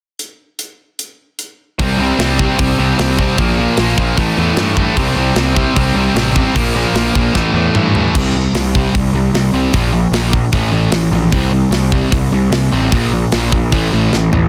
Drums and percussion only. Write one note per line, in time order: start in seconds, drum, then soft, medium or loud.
0.19 closed hi-hat soft
0.59 closed hi-hat medium
0.99 closed hi-hat soft
1.39 closed hi-hat medium
1.79 kick loud
1.79 open hi-hat soft
2.19 snare loud
2.19 open hi-hat medium
2.39 kick medium
2.59 kick loud
2.59 open hi-hat medium
2.99 snare loud
2.99 open hi-hat medium
3.19 kick medium
3.38 kick loud
3.38 open hi-hat soft
3.77 snare loud
3.77 open hi-hat medium
3.98 kick medium
4.18 kick medium
4.18 open hi-hat soft
4.57 snare loud
4.57 open hi-hat soft
4.77 kick medium
4.97 kick loud
4.97 open hi-hat medium
5.36 snare loud
5.36 open hi-hat medium
5.56 kick medium
5.76 kick medium
5.76 open hi-hat soft
6.16 snare loud
6.16 open hi-hat medium
6.36 kick medium
6.56 kick loud
6.56 open hi-hat medium
6.95 snare loud
6.95 open hi-hat medium
7.15 kick medium
7.35 kick medium
7.35 snare soft
7.75 mid tom medium
7.95 floor tom medium
8.15 kick medium
8.15 crash loud
8.55 snare loud
8.55 open hi-hat medium
8.75 kick medium
8.95 kick medium
8.95 open hi-hat soft
9.35 snare loud
9.35 open hi-hat medium
9.73 kick medium
9.73 open hi-hat soft
10.13 snare loud
10.13 open hi-hat medium
10.33 kick medium
10.52 kick medium
10.52 open hi-hat soft
10.92 snare loud
10.92 open hi-hat medium
11.32 kick loud
11.32 open hi-hat medium
11.72 snare loud
11.72 open hi-hat medium
11.92 kick medium
12.12 kick loud
12.12 open hi-hat medium
12.52 snare loud
12.52 open hi-hat medium
12.92 kick loud
12.92 open hi-hat medium
13.32 snare loud
13.32 open hi-hat medium
13.52 kick medium
13.72 kick medium
13.72 open hi-hat soft
14.13 snare medium
14.33 floor tom medium